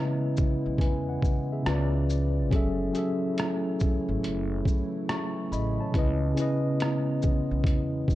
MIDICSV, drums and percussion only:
0, 0, Header, 1, 2, 480
1, 0, Start_track
1, 0, Tempo, 857143
1, 1406, Time_signature, 4, 2, 24, 8
1, 4564, End_track
2, 0, Start_track
2, 0, Title_t, "Drums"
2, 206, Note_on_c, 9, 82, 47
2, 214, Note_on_c, 9, 36, 91
2, 262, Note_off_c, 9, 82, 0
2, 270, Note_off_c, 9, 36, 0
2, 439, Note_on_c, 9, 36, 94
2, 455, Note_on_c, 9, 42, 82
2, 495, Note_off_c, 9, 36, 0
2, 511, Note_off_c, 9, 42, 0
2, 686, Note_on_c, 9, 36, 90
2, 697, Note_on_c, 9, 82, 45
2, 742, Note_off_c, 9, 36, 0
2, 753, Note_off_c, 9, 82, 0
2, 931, Note_on_c, 9, 37, 112
2, 932, Note_on_c, 9, 42, 67
2, 987, Note_off_c, 9, 37, 0
2, 988, Note_off_c, 9, 42, 0
2, 1175, Note_on_c, 9, 82, 48
2, 1231, Note_off_c, 9, 82, 0
2, 1408, Note_on_c, 9, 36, 107
2, 1414, Note_on_c, 9, 42, 69
2, 1464, Note_off_c, 9, 36, 0
2, 1470, Note_off_c, 9, 42, 0
2, 1651, Note_on_c, 9, 42, 48
2, 1651, Note_on_c, 9, 82, 49
2, 1707, Note_off_c, 9, 42, 0
2, 1707, Note_off_c, 9, 82, 0
2, 1891, Note_on_c, 9, 42, 74
2, 1902, Note_on_c, 9, 37, 102
2, 1947, Note_off_c, 9, 42, 0
2, 1958, Note_off_c, 9, 37, 0
2, 2128, Note_on_c, 9, 82, 45
2, 2135, Note_on_c, 9, 36, 91
2, 2184, Note_off_c, 9, 82, 0
2, 2191, Note_off_c, 9, 36, 0
2, 2376, Note_on_c, 9, 42, 84
2, 2432, Note_off_c, 9, 42, 0
2, 2606, Note_on_c, 9, 36, 92
2, 2618, Note_on_c, 9, 82, 46
2, 2662, Note_off_c, 9, 36, 0
2, 2674, Note_off_c, 9, 82, 0
2, 2852, Note_on_c, 9, 37, 105
2, 2853, Note_on_c, 9, 42, 66
2, 2908, Note_off_c, 9, 37, 0
2, 2909, Note_off_c, 9, 42, 0
2, 3094, Note_on_c, 9, 82, 44
2, 3150, Note_off_c, 9, 82, 0
2, 3327, Note_on_c, 9, 36, 111
2, 3332, Note_on_c, 9, 42, 71
2, 3383, Note_off_c, 9, 36, 0
2, 3388, Note_off_c, 9, 42, 0
2, 3569, Note_on_c, 9, 42, 47
2, 3569, Note_on_c, 9, 82, 50
2, 3625, Note_off_c, 9, 42, 0
2, 3625, Note_off_c, 9, 82, 0
2, 3809, Note_on_c, 9, 42, 69
2, 3820, Note_on_c, 9, 37, 102
2, 3865, Note_off_c, 9, 42, 0
2, 3876, Note_off_c, 9, 37, 0
2, 4045, Note_on_c, 9, 82, 45
2, 4053, Note_on_c, 9, 36, 88
2, 4101, Note_off_c, 9, 82, 0
2, 4109, Note_off_c, 9, 36, 0
2, 4278, Note_on_c, 9, 36, 94
2, 4292, Note_on_c, 9, 42, 82
2, 4334, Note_off_c, 9, 36, 0
2, 4348, Note_off_c, 9, 42, 0
2, 4524, Note_on_c, 9, 36, 94
2, 4536, Note_on_c, 9, 82, 46
2, 4564, Note_off_c, 9, 36, 0
2, 4564, Note_off_c, 9, 82, 0
2, 4564, End_track
0, 0, End_of_file